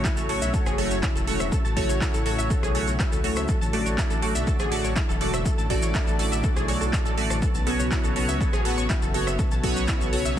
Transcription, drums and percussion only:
0.05 kick, clap, maracas
0.17 maracas
0.29 open hi-hat
0.42 maracas
0.54 kick, maracas
0.66 cross-stick, maracas
0.78 open hi-hat
0.91 maracas
1.03 kick, clap, maracas
1.16 maracas
1.27 open hi-hat
1.40 cross-stick, maracas
1.52 kick, maracas
1.65 maracas
1.77 kick, open hi-hat
1.89 maracas
2.01 kick, clap, maracas
2.14 maracas
2.26 open hi-hat
2.39 maracas
2.50 kick, maracas
2.63 cross-stick, maracas
2.75 open hi-hat
2.87 maracas
3.00 kick, clap, maracas
3.12 maracas
3.24 open hi-hat
3.36 cross-stick, maracas
3.48 kick, maracas
3.62 maracas
3.73 open hi-hat
3.86 maracas
3.98 kick, clap, maracas
4.10 maracas
4.22 open hi-hat
4.35 maracas
4.47 kick, maracas
4.59 cross-stick, maracas
4.72 open hi-hat
4.84 maracas
4.96 kick, clap, maracas
5.10 maracas
5.21 open hi-hat
5.33 cross-stick, maracas
5.45 kick, maracas
5.58 maracas
5.70 kick, open hi-hat
5.82 maracas
5.94 kick, clap, maracas
6.07 maracas
6.19 open hi-hat
6.32 maracas
6.43 kick, maracas
6.57 cross-stick, maracas
6.68 open hi-hat
6.81 maracas
6.93 kick, clap, maracas
7.06 maracas
7.18 open hi-hat
7.30 cross-stick, maracas
7.42 kick, maracas
7.55 maracas
7.67 open hi-hat
7.79 maracas
7.91 kick, clap, maracas
8.04 maracas
8.16 open hi-hat
8.29 maracas
8.41 kick, maracas
8.53 cross-stick, maracas
8.65 open hi-hat
8.78 maracas
8.90 kick, clap, maracas
9.02 maracas
9.14 open hi-hat
9.27 cross-stick, maracas
9.39 kick, maracas
9.51 maracas
9.63 kick, open hi-hat
9.76 maracas
9.88 kick, clap, maracas
10.01 maracas
10.13 open hi-hat
10.25 maracas

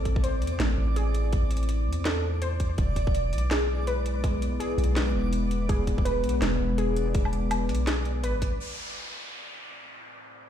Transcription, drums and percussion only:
0.05 kick, closed hi-hat
0.16 kick
0.24 closed hi-hat
0.42 closed hi-hat
0.47 closed hi-hat
0.60 snare, closed hi-hat
0.96 closed hi-hat
1.14 closed hi-hat
1.33 kick, closed hi-hat
1.51 closed hi-hat
1.57 closed hi-hat
1.63 closed hi-hat
1.69 closed hi-hat
1.93 closed hi-hat
2.05 snare, closed hi-hat
2.42 closed hi-hat
2.60 kick, closed hi-hat
2.78 kick, closed hi-hat
2.96 kick, closed hi-hat
3.07 kick
3.15 closed hi-hat
3.33 closed hi-hat
3.38 closed hi-hat
3.51 snare, closed hi-hat
3.87 closed hi-hat
4.06 closed hi-hat
4.24 kick, closed hi-hat
4.42 closed hi-hat
4.60 closed hi-hat
4.78 closed hi-hat
4.84 closed hi-hat
4.96 snare, closed hi-hat
5.33 closed hi-hat
5.51 closed hi-hat
5.69 kick, closed hi-hat
5.87 kick, closed hi-hat
5.98 kick
6.05 closed hi-hat
6.24 closed hi-hat
6.29 closed hi-hat
6.42 snare, closed hi-hat
6.78 closed hi-hat
6.96 closed hi-hat
7.15 kick, closed hi-hat
7.25 low woodblock
7.33 closed hi-hat
7.51 closed hi-hat, low woodblock
7.69 closed hi-hat
7.75 closed hi-hat
7.87 snare, closed hi-hat
8.05 closed hi-hat
8.24 closed hi-hat
8.42 kick, closed hi-hat

